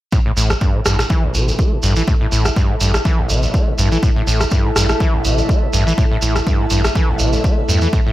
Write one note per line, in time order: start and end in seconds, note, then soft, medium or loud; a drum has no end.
0.12 0.20 A2 medium
0.12 8.13 E4 medium
0.12 kick loud
0.12 shekere soft
0.23 0.32 A2 medium
0.23 8.13 A4 medium
0.23 8.08 A5 medium
0.37 0.56 A1 loud
0.37 0.52 A2 medium
0.37 8.13 E5 medium
0.37 shekere medium
0.50 0.54 A1 loud
0.50 cross-stick medium
0.50 shekere soft
0.61 0.76 G2 medium
0.61 kick loud
0.61 shekere soft
0.75 0.81 A2 medium
0.86 1.04 A1 medium
0.86 0.97 G2 loud
0.86 cross-stick medium
0.86 shekere medium
0.99 1.03 A1 medium
0.99 cross-stick medium
0.99 shekere medium
1.10 1.25 E3 medium
1.10 kick loud
1.10 shekere soft
1.24 1.36 A1 medium
1.34 1.53 A1 medium
1.34 1.49 C3 medium
1.34 shekere medium
1.48 1.60 A1 loud
1.48 shekere medium
1.59 1.74 A3 medium
1.59 kick loud
1.59 shekere soft
1.72 1.78 A2 medium
1.83 2.02 A1 loud
1.83 1.94 G2 loud
1.83 shekere medium
1.96 2.03 E3 loud
1.96 shekere medium
2.07 2.15 A2 medium
2.07 kick loud
2.07 shekere soft
2.21 2.27 A2 medium
2.32 2.51 A1 loud
2.32 2.47 A2 medium
2.32 shekere medium
2.45 2.49 A1 loud
2.45 cross-stick medium
2.45 shekere soft
2.56 2.71 G2 medium
2.56 kick loud
2.56 shekere soft
2.70 2.76 A2 medium
2.81 2.99 A1 medium
2.81 2.92 G2 loud
2.81 shekere medium
2.94 2.98 A1 medium
2.94 cross-stick medium
2.94 shekere soft
3.05 3.20 E3 medium
3.05 kick loud
3.05 shekere soft
3.19 3.31 A1 medium
3.30 3.48 A1 medium
3.30 3.45 C3 medium
3.30 shekere medium
3.43 3.56 A1 loud
3.43 shekere medium
3.54 3.69 A3 medium
3.54 kick loud
3.54 shekere soft
3.67 3.73 A2 medium
3.78 3.97 A1 loud
3.78 3.89 G2 loud
3.78 shekere medium
3.92 3.98 E3 loud
3.92 shekere soft
4.03 4.10 A2 medium
4.03 kick loud
4.03 shekere soft
4.16 4.22 A2 medium
4.27 4.46 A1 loud
4.27 4.42 A2 medium
4.27 shekere medium
4.40 4.44 A1 loud
4.40 cross-stick medium
4.40 shekere medium
4.51 4.66 G2 medium
4.51 kick loud
4.51 shekere soft
4.65 4.71 A2 medium
4.76 4.95 A1 medium
4.76 4.87 G2 loud
4.76 cross-stick medium
4.76 shekere loud
4.89 4.93 A1 medium
4.89 cross-stick medium
4.89 shekere medium
5.00 5.15 E3 medium
5.00 kick loud
5.00 shekere soft
5.14 5.26 A1 medium
5.25 5.43 A1 medium
5.25 5.40 C3 medium
5.25 shekere medium
5.38 5.50 A1 loud
5.38 shekere soft
5.49 5.64 A3 medium
5.49 kick loud
5.49 shekere soft
5.63 5.69 A2 medium
5.73 5.92 A1 loud
5.73 5.85 G2 loud
5.73 shekere medium
5.87 5.93 E3 loud
5.87 shekere medium
5.98 6.05 A2 medium
5.98 kick loud
5.98 shekere soft
6.11 6.17 A2 medium
6.22 6.41 A1 loud
6.22 6.37 A2 medium
6.22 shekere medium
6.36 6.39 A1 loud
6.36 cross-stick medium
6.36 shekere soft
6.47 6.61 G2 medium
6.47 kick loud
6.47 shekere soft
6.60 6.66 A2 medium
6.70 6.90 A1 medium
6.70 6.82 G2 loud
6.70 shekere medium
6.84 6.88 A1 medium
6.84 cross-stick medium
6.84 shekere medium
6.95 7.10 E3 medium
6.95 kick loud
6.95 shekere soft
7.09 7.21 A1 medium
7.19 7.38 A1 medium
7.19 7.35 C3 medium
7.19 shekere medium
7.33 7.46 A1 loud
7.33 shekere medium
7.44 7.59 A3 medium
7.44 kick loud
7.44 shekere soft
7.58 7.64 A2 medium
7.69 7.87 E2 medium
7.69 7.80 G2 loud
7.69 shekere medium
7.81 7.88 E3 loud
7.81 shekere medium
7.93 8.00 A2 medium
7.93 kick loud
7.93 shekere soft
8.05 8.12 A2 medium
8.05 8.13 G5 medium